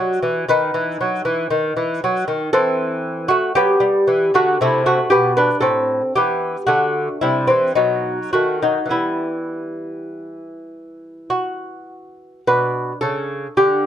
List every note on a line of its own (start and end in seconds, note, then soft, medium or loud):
0.00 0.21 F#3 medium
0.00 0.44 F#4 medium
0.00 0.43 D#5 medium
0.23 0.47 E3 medium
0.48 0.73 D#3 medium
0.48 2.51 D#4 medium
0.48 2.50 B4 medium
0.74 0.98 E3 medium
1.01 1.24 F#3 medium
1.25 1.49 E3 medium
1.50 1.75 D#3 medium
1.77 2.01 E3 medium
2.04 2.27 F#3 medium
2.28 2.52 D#3 medium
2.53 3.27 E3 medium
2.53 3.27 C4 medium
2.53 3.27 A4 medium
3.28 3.55 A3 medium
3.28 3.55 F#4 medium
3.55 3.80 F#3 medium
3.55 4.31 B3 medium
3.55 4.31 G4 medium
3.80 4.06 G3 medium
4.07 4.33 E3 medium
4.34 4.60 D3 medium
4.34 4.59 A3 medium
4.34 4.61 F#4 medium
4.61 4.99 C3 medium
4.61 4.85 A3 medium
4.61 4.86 E4 medium
4.86 5.11 A3 medium
4.86 5.13 F#4 medium
5.10 5.49 B2 medium
5.10 5.37 B3 medium
5.10 5.36 G4 medium
5.37 5.63 D4 medium
5.37 5.60 B4 medium
5.60 6.00 A2 medium
5.60 6.12 C4 medium
5.60 6.13 A4 medium
6.16 6.55 E3 medium
6.16 6.66 B3 medium
6.16 6.66 G4 medium
6.67 7.07 D3 medium
6.67 7.19 A3 medium
6.67 7.20 F#4 medium
7.21 7.49 C3 medium
7.21 7.48 G3 medium
7.21 7.50 E4 medium
7.47 7.76 E3 medium
7.47 7.75 C4 medium
7.75 8.18 B2 soft
7.75 8.30 F#3 soft
7.75 8.31 D#4 medium
8.33 8.77 D#3 soft
8.33 8.62 A3 soft
8.33 8.62 F#4 medium
8.62 8.91 F#3 soft
8.62 8.90 D#4 medium
8.86 12.40 E3 soft
8.86 12.42 B3 soft
8.91 11.86 G3 soft
8.91 11.30 E4 medium
11.30 12.43 F#4 medium
12.47 12.91 B2 soft
12.47 13.86 D4 soft
12.47 13.00 B4 medium
13.01 13.46 C#3 medium
13.01 13.54 A4 medium
13.57 13.86 D3 medium
13.57 13.86 G4 medium